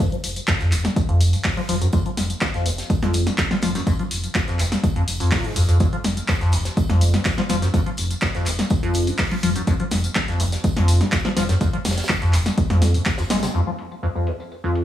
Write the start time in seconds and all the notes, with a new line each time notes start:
0.00 tambourine
0.12 F3, closed hi-hat
0.24 F1, open hi-hat, tambourine
0.36 closed hi-hat, tambourine
0.48 F2, kick, snare, clap, closed hi-hat, tambourine
0.61 F2, snare, closed hi-hat
0.72 F1 D#2, clap, open hi-hat, tambourine
0.84 snare, closed hi-hat, tambourine
0.96 kick, closed hi-hat, tambourine
1.09 F2, closed hi-hat
1.20 F1, open hi-hat, tambourine
1.33 G#2, open hi-hat, tambourine
1.44 kick, snare, clap, closed hi-hat, open hi-hat, tambourine
1.57 F3, closed hi-hat
1.69 F1 F3, open hi-hat, tambourine
1.81 F#2, closed hi-hat, tambourine
1.93 F2, kick, closed hi-hat, tambourine
2.06 F3, closed hi-hat
2.17 F1, snare, open hi-hat, tambourine
2.30 closed hi-hat, tambourine
2.41 F2, kick, snare, clap, closed hi-hat, tambourine
2.54 F2, snare, closed hi-hat
2.66 F1 D#2, open hi-hat, tambourine
2.78 snare, closed hi-hat, tambourine
2.90 kick, closed hi-hat, tambourine
3.02 F2, snare, closed hi-hat
3.13 F1, open hi-hat, tambourine
3.27 G#2, snare, closed hi-hat, tambourine
3.38 kick, snare, clap, closed hi-hat, tambourine
3.51 F3, snare, closed hi-hat
3.62 F1 F3, snare, open hi-hat, tambourine
3.75 F#2, snare, closed hi-hat, tambourine
3.87 F2, kick, closed hi-hat, tambourine
3.99 F3, closed hi-hat
4.11 F1, open hi-hat, tambourine
4.24 closed hi-hat, tambourine
4.35 F2, kick, snare, clap, closed hi-hat, tambourine
4.48 F2, snare, closed hi-hat
4.59 F1 D#2, clap, open hi-hat, tambourine
4.72 snare, closed hi-hat, tambourine
4.84 kick, closed hi-hat, tambourine
4.96 F2, closed hi-hat
5.08 F1, open hi-hat, tambourine
5.20 F2, open hi-hat, tambourine
5.31 A#2, kick, snare, clap, closed hi-hat, open hi-hat, tambourine
5.44 G#2, closed hi-hat
5.56 F1 F2, open hi-hat, tambourine
5.68 F2, closed hi-hat, tambourine
5.80 F2, kick, closed hi-hat, tambourine
5.93 F3, closed hi-hat
6.04 F1, snare, open hi-hat, tambourine
6.17 closed hi-hat, tambourine
6.28 F2, kick, snare, clap, closed hi-hat, tambourine
6.41 F2, snare, closed hi-hat
6.52 F1 D#2, open hi-hat, tambourine
6.65 snare, closed hi-hat, tambourine
6.77 kick, closed hi-hat, tambourine
6.89 F2, snare, closed hi-hat
7.01 F1, open hi-hat, tambourine
7.14 G#2, snare, closed hi-hat, tambourine
7.25 kick, snare, clap, closed hi-hat, tambourine
7.38 F3, snare, closed hi-hat
7.49 F1 F3, snare, open hi-hat, tambourine
7.62 F#2, snare, closed hi-hat, tambourine
7.74 F2, kick, closed hi-hat, tambourine
7.86 F3, closed hi-hat
7.97 F1, open hi-hat, tambourine
8.11 closed hi-hat, tambourine
8.22 F2, kick, snare, clap, closed hi-hat, tambourine
8.35 F2, snare, closed hi-hat
8.46 F1 D#2, clap, open hi-hat, tambourine
8.58 snare, closed hi-hat, tambourine
8.70 kick, closed hi-hat, tambourine
8.83 F2, closed hi-hat
8.94 F1, open hi-hat, tambourine
9.07 G#2, open hi-hat, tambourine
9.18 kick, snare, clap, closed hi-hat, open hi-hat, tambourine
9.31 F3, closed hi-hat
9.43 F1 F3, open hi-hat, tambourine
9.56 F#2, closed hi-hat, tambourine
9.67 F2, kick, closed hi-hat, tambourine
9.80 F3, closed hi-hat
9.91 F1, snare, open hi-hat, tambourine
10.04 closed hi-hat, tambourine
10.15 F2, kick, snare, clap, closed hi-hat, tambourine
10.28 F2, snare, closed hi-hat
10.40 F1 D#2, open hi-hat, tambourine
10.52 snare, closed hi-hat, tambourine
10.64 kick, closed hi-hat, tambourine
10.77 F2, snare, closed hi-hat
10.88 F1, open hi-hat, tambourine
11.01 G#2, snare, closed hi-hat, tambourine
11.12 kick, snare, clap, closed hi-hat, tambourine
11.25 F3, snare, closed hi-hat
11.37 F1 F3, snare, open hi-hat, tambourine
11.49 F#2, snare, closed hi-hat, tambourine
11.61 F2, kick, closed hi-hat, tambourine
11.73 F3, closed hi-hat
11.85 F1, snare, open hi-hat, tambourine
11.91 snare, tambourine
11.98 snare, closed hi-hat, tambourine
12.04 snare, tambourine
12.09 F2, kick, snare, clap, closed hi-hat, tambourine
12.22 F2, snare, closed hi-hat
12.33 F1 D#2, clap, open hi-hat, tambourine
12.46 snare, closed hi-hat, tambourine
12.58 kick, closed hi-hat, tambourine
12.70 F2, snare, closed hi-hat
12.82 F2, snare, open hi-hat, tambourine
12.94 C3, open hi-hat, tambourine
13.06 kick, snare, clap, closed hi-hat, tambourine
13.18 F2, snare, closed hi-hat, tambourine
13.30 F1 G#3, snare, open hi-hat, tambourine
13.43 C3, snare, closed hi-hat, tambourine
13.54 F2, tambourine
13.67 F3, tambourine
13.79 open hi-hat
13.92 tambourine
14.03 F2, tambourine
14.15 F2, tambourine
14.27 D#2, open hi-hat
14.40 tambourine
14.52 tambourine
14.64 F2, tambourine
14.75 open hi-hat